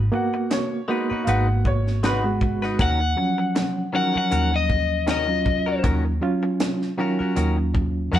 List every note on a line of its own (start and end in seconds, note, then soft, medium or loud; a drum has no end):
0.00 1.24 B5 medium
0.12 0.80 A#3 medium
0.12 0.80 B3 medium
0.12 0.81 F#4 medium
0.12 0.51 F#5 medium
0.12 muted clean electric guitar stroke soft
0.34 muted clean electric guitar stroke soft
0.51 1.26 C#5 medium
0.51 muted clean electric guitar stroke soft
0.51 snare loud
0.51 closed hi-hat medium
0.88 1.10 G#3 medium
0.88 2.06 A#3 medium
0.88 2.06 B3 medium
0.88 1.10 D#4 medium
0.88 2.06 F#4 medium
0.88 1.10 F#4 medium
0.88 1.08 B4 medium
1.10 1.26 D#4 soft
1.10 1.27 F#4 medium
1.10 1.27 B4 medium
1.10 muted fingered electric bass stroke soft
1.24 2.75 G#1 medium
1.24 1.48 G#3 medium
1.24 1.48 D#4 medium
1.24 1.48 F#4 medium
1.24 1.29 F5 medium
1.24 closed hi-hat medium
1.29 1.47 B4 medium
1.29 1.65 F#5 medium
1.48 muted clean electric guitar stroke soft
1.65 2.03 C#5 medium
1.65 muted clean electric guitar stroke soft
1.65 kick medium
1.87 snare soft
2.03 2.24 G#3 medium
2.03 2.25 D#4 medium
2.03 2.24 F#4 medium
2.03 2.59 F#4 medium
2.03 2.23 B4 medium
2.03 2.62 B4 medium
2.03 snare loud
2.03 closed hi-hat medium
2.24 2.79 G#3 medium
2.24 2.79 B3 medium
2.24 2.80 F#4 medium
2.24 muted clean electric guitar stroke soft
2.41 muted clean electric guitar stroke soft
2.41 kick medium
2.62 2.79 D#4 soft
2.62 2.79 F#4 soft
2.62 2.79 B4 soft
2.62 snare soft
2.79 3.14 D#2 loud
2.79 3.00 D#3 medium
2.79 3.00 C#4 medium
2.79 3.00 F#4 medium
2.79 2.99 A#4 medium
2.79 3.92 F#5 medium
2.79 kick loud
2.79 closed hi-hat medium
3.00 muted clean electric guitar stroke soft
3.17 3.86 F3 medium
3.17 3.85 F#3 medium
3.17 3.85 C#4 medium
3.17 muted clean electric guitar stroke soft
3.38 muted clean electric guitar stroke soft
3.55 muted clean electric guitar stroke soft
3.55 snare loud
3.55 closed hi-hat medium
3.93 4.15 D#3 medium
3.93 5.11 F3 medium
3.93 5.10 F#3 medium
3.93 4.15 C#4 medium
3.93 5.11 C#4 medium
3.93 4.14 F#4 medium
3.93 4.13 A#4 medium
3.93 4.15 F#5 medium
4.14 4.30 C#4 soft
4.14 4.31 F#4 soft
4.14 4.31 A#4 medium
4.14 4.53 F#5 medium
4.14 muted fingered electric bass stroke soft
4.31 5.80 D#2 medium
4.31 4.53 D#3 medium
4.31 4.53 C#4 medium
4.31 4.52 F#4 medium
4.31 4.51 A#4 medium
4.31 closed hi-hat medium
4.53 5.08 D#5 medium
4.53 muted clean electric guitar stroke soft
4.69 muted clean electric guitar stroke soft
4.69 kick medium
5.07 5.29 D#3 soft
5.07 5.28 C#4 soft
5.07 5.28 F#4 medium
5.07 5.27 A#4 medium
5.07 snare medium
5.07 closed hi-hat soft
5.11 5.84 D#5 medium
5.28 6.11 F#3 medium
5.28 6.12 C#4 medium
5.28 6.12 F4 medium
5.28 muted clean electric guitar stroke soft
5.45 muted clean electric guitar stroke soft
5.45 kick medium
5.66 5.83 C#4 soft
5.66 5.83 F#4 soft
5.66 5.84 A#4 soft
5.83 6.19 D#2 loud
5.83 6.05 D#3 medium
5.83 6.05 C#4 medium
5.83 6.04 F#4 medium
5.83 6.04 A#4 medium
5.83 kick loud
5.83 closed hi-hat medium
6.05 muted clean electric guitar stroke soft
6.21 6.90 F#3 medium
6.21 6.90 C#4 medium
6.21 6.90 F4 medium
6.21 muted clean electric guitar stroke soft
6.43 muted clean electric guitar stroke soft
6.60 muted clean electric guitar stroke soft
6.60 snare loud
6.60 closed hi-hat medium
6.82 snare soft
6.97 7.20 D#3 medium
6.97 8.15 F#3 medium
6.97 8.15 C#4 medium
6.97 7.20 C#4 medium
6.97 8.16 F4 medium
6.97 7.19 F#4 medium
6.97 7.18 A#4 medium
7.19 7.35 C#4 soft
7.19 7.36 F#4 medium
7.19 7.36 A#4 medium
7.19 muted fingered electric bass stroke soft
7.36 8.09 D#2 medium
7.36 7.58 D#3 medium
7.36 7.57 C#4 medium
7.36 7.57 F#4 medium
7.36 7.56 A#4 medium
7.36 closed hi-hat medium
7.58 muted clean electric guitar stroke soft
7.74 muted clean electric guitar stroke soft
7.74 kick medium
8.12 8.19 F2 medium
8.12 8.19 D#3 medium
8.12 8.19 C#4 soft
8.12 8.19 F#4 medium
8.12 8.19 A#4 soft
8.12 snare soft
8.16 8.19 G#5 medium